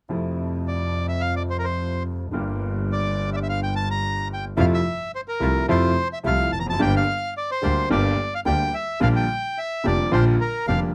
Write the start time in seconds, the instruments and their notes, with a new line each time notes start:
0.09 upright piano F2 C3 F3 A3 E4, double bass F2
0.68 bandoneon D5
1.08 bandoneon E5
1.21 bandoneon F5
1.36 bandoneon D5
1.50 bandoneon C5
1.59 bandoneon A#4
1.64 bandoneon C5
2.31 upright piano G1 G2 D3 G3 A#3 G4, double bass G1
2.92 bandoneon D5
3.33 bandoneon D5 E5
3.43 bandoneon E5
3.49 bandoneon F5
3.63 bandoneon G5
3.76 bandoneon A5
3.91 bandoneon A#5
4.33 bandoneon G5
4.57 upright piano F2 C3 F3 A3 E4, double bass F2, bandoneon A3 E4 F4 F5
4.74 bandoneon E5
5.15 bandoneon C5
5.28 bandoneon A#4
5.40 upright piano C2 C3 F3 A3 E4, double bass C2, bandoneon A3 E4 F4
5.68 double bass F2, upright piano F2 C3 F3 A3 E4, bandoneon A3 E4 F4 C5
6.13 bandoneon E5
6.23 upright piano C2 C3 F3 A3 E4, double bass C2, bandoneon A3 E4 F4 F5
6.52 double bass F1, bandoneon A5
6.59 upright piano E2, bandoneon A#5
6.66 upright piano F2, bandoneon A5
6.73 upright piano F#2
6.79 upright piano G1 G2 D3 G3 A#3 G4, double bass G1, bandoneon A#3 D4 G4 G5
6.97 bandoneon F5
7.37 bandoneon D5
7.51 bandoneon C5
7.62 upright piano D2 D3 G3 A#3 G4, double bass D2, bandoneon A#3 D4 G4
7.90 double bass G1, upright piano G1 G2 D3 G3 A#3 G4, bandoneon A#3 D4 G4 D5
8.35 bandoneon F5
8.45 upright piano D2 D3 G3 A#3 G4, double bass D2, bandoneon A#3 D4 G4 G5
8.74 bandoneon E5
9.00 upright piano A#1 A#2 D3 G3 A#3 F4, double bass A#1, bandoneon A#3 D4 G4 F5
9.16 bandoneon G5
9.58 bandoneon E5
9.84 upright piano F1 F2 D3 G3 A#3 F4, double bass F1, bandoneon A#3 D4 G4 D5
10.12 upright piano A#1 A#2 D3 G3 A#3 F4, double bass A#1, bandoneon A#3 D4 G4 C5
10.40 bandoneon A#4
10.67 double bass F1, upright piano F1 F2 D3 G3 A#3 F4, bandoneon A#3 D4 G4 F5